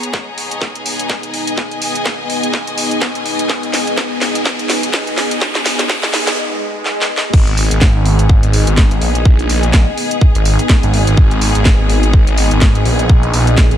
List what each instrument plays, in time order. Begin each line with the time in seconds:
Already playing: string section B3 G#4 C#5 A#5, ambient pad B3 D#4 G#4 D#5, riser
0.03 closed hi-hat
0.14 kick, snare
0.18 string section D#5
0.38 open hi-hat
0.51 string section G#5, closed hi-hat
0.62 kick, snare
0.75 closed hi-hat
0.86 open hi-hat
0.99 closed hi-hat
1.10 kick, snare
1.23 closed hi-hat
1.34 open hi-hat
1.47 closed hi-hat
1.58 kick, snare
1.71 closed hi-hat
1.82 open hi-hat
1.95 closed hi-hat
2.06 kick, snare
2.30 open hi-hat
2.43 closed hi-hat
2.54 kick, snare
2.67 closed hi-hat
2.78 open hi-hat
2.91 closed hi-hat
3.02 kick, snare
3.15 closed hi-hat
3.26 open hi-hat
3.39 closed hi-hat
3.50 kick, snare
3.63 closed hi-hat
3.74 snare, open hi-hat
3.87 closed hi-hat
3.98 kick, snare
4.22 snare, open hi-hat
4.35 closed hi-hat
4.46 kick, snare
4.59 closed hi-hat
4.70 snare, open hi-hat
4.83 closed hi-hat
4.93 kick, snare
5.07 closed hi-hat
5.18 snare, open hi-hat
5.31 closed hi-hat
5.41 kick, snare
5.55 snare, closed hi-hat
5.66 snare, open hi-hat
5.79 snare, closed hi-hat
5.89 kick, snare
6.03 snare, closed hi-hat
6.13 snare, open hi-hat
6.27 snare, closed hi-hat
6.38 swell
6.86 snare
7.01 snare
7.17 snare
7.33 detuned saw bass G#1, ambient pad B3 D#4 G#4 D#5, string section B3, kick, crash
7.47 closed hi-hat
7.57 string section G#4, open hi-hat
7.71 detuned saw bass G#1, closed hi-hat
7.81 kick, snare
7.95 detuned saw bass G#1
8.05 open hi-hat
8.19 closed hi-hat
8.29 kick
8.43 detuned saw bass G#1, closed hi-hat
8.53 open hi-hat
8.67 detuned saw bass G#1, closed hi-hat
8.77 kick, snare
8.91 closed hi-hat
9.01 detuned saw bass A#1, open hi-hat
9.15 closed hi-hat
9.25 kick
9.39 closed hi-hat
9.49 detuned saw bass A#1, open hi-hat
9.63 closed hi-hat
9.73 kick, snare
9.98 open hi-hat
10.11 closed hi-hat
10.21 kick
10.35 detuned saw bass G#1, closed hi-hat
10.45 open hi-hat
10.59 closed hi-hat
10.69 kick, snare
10.83 detuned saw bass G#1, closed hi-hat
10.94 open hi-hat
11.07 detuned saw bass G#1, closed hi-hat
11.17 detuned saw bass G#1, kick
11.31 closed hi-hat
11.41 open hi-hat
11.55 detuned saw bass G#1, closed hi-hat
11.65 kick, snare
11.79 detuned saw bass G#1
11.89 open hi-hat
12.03 closed hi-hat
12.13 kick
12.27 detuned saw bass G#1, closed hi-hat
12.38 open hi-hat
12.51 detuned saw bass G#1, closed hi-hat
12.61 kick, snare
12.75 closed hi-hat
12.85 detuned saw bass A#1, open hi-hat
12.99 closed hi-hat
13.10 kick
13.23 closed hi-hat
13.33 detuned saw bass A#1, open hi-hat
13.47 closed hi-hat
13.58 kick, snare
13.71 detuned saw bass G#1, closed hi-hat